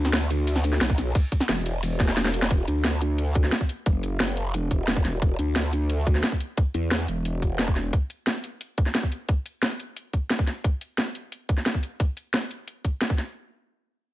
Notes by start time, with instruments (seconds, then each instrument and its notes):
Already playing: wobble bass D2
0.05 snare, shaker
0.13 snare, closed hi-hat, ride, shaker
0.30 closed hi-hat, ride
0.47 closed hi-hat, ride, shaker
0.56 snare
0.64 closed hi-hat, ride, shaker
0.73 snare
0.81 wobble bass B1, snare, closed hi-hat, ride, shaker
0.90 kick
0.98 snare, closed hi-hat, ride, shaker
1.15 kick, closed hi-hat, ride, shaker
1.32 kick, closed hi-hat, ride
1.40 snare, shaker
1.49 wobble bass E1, snare, closed hi-hat, ride, shaker
1.66 closed hi-hat, ride, shaker
1.83 closed hi-hat, ride, shaker
2.00 kick, snare, closed hi-hat, ride, shaker
2.08 snare
2.17 snare, closed hi-hat, ride, shaker
2.25 snare
2.34 closed hi-hat, ride, shaker
2.42 snare, shaker
2.51 wobble bass E1, kick, closed hi-hat
2.68 wobble bass D2, closed hi-hat
2.84 snare, closed hi-hat
3.01 closed hi-hat
3.18 closed hi-hat
3.35 kick, closed hi-hat
3.44 snare
3.52 snare, closed hi-hat
3.61 kick
3.69 closed hi-hat
3.86 wobble bass F#1, kick, closed hi-hat
4.03 closed hi-hat
4.20 snare, closed hi-hat
4.37 closed hi-hat
4.45 wobble bass F1
4.54 closed hi-hat
4.71 wobble bass E1, kick, closed hi-hat
4.88 snare, closed hi-hat
4.96 kick
5.05 wobble bass E1, snare, closed hi-hat
5.22 wobble bass E1, kick, closed hi-hat
5.39 wobble bass D2, closed hi-hat
5.56 snare, closed hi-hat
5.73 closed hi-hat
5.90 closed hi-hat
6.07 kick, closed hi-hat
6.15 snare
6.24 snare, closed hi-hat
6.32 kick
6.40 closed hi-hat
6.57 kick, closed hi-hat
6.74 wobble bass E2, closed hi-hat
6.91 snare, closed hi-hat
7.08 wobble bass E1, closed hi-hat
7.25 closed hi-hat
7.42 kick, closed hi-hat
7.59 snare, closed hi-hat
7.68 kick
7.76 snare, closed hi-hat
7.93 kick, closed hi-hat
8.10 closed hi-hat
8.27 snare, closed hi-hat
8.44 closed hi-hat
8.61 closed hi-hat
8.78 kick, closed hi-hat
8.86 snare
8.95 snare, closed hi-hat
9.03 kick
9.12 closed hi-hat
9.29 kick, closed hi-hat
9.46 closed hi-hat
9.63 snare, closed hi-hat
9.80 closed hi-hat
9.96 closed hi-hat
10.13 kick, closed hi-hat
10.30 snare, closed hi-hat
10.39 kick
10.47 snare, closed hi-hat
10.64 kick, closed hi-hat
10.81 closed hi-hat
10.98 snare, closed hi-hat
11.15 closed hi-hat
11.32 closed hi-hat
11.49 kick, closed hi-hat
11.58 snare
11.66 snare, closed hi-hat
11.74 kick
11.83 closed hi-hat
12.00 kick, closed hi-hat
12.17 closed hi-hat
12.34 snare, closed hi-hat
12.51 closed hi-hat
12.68 closed hi-hat
12.85 kick, closed hi-hat
13.01 snare, closed hi-hat
13.10 kick
13.18 snare, closed hi-hat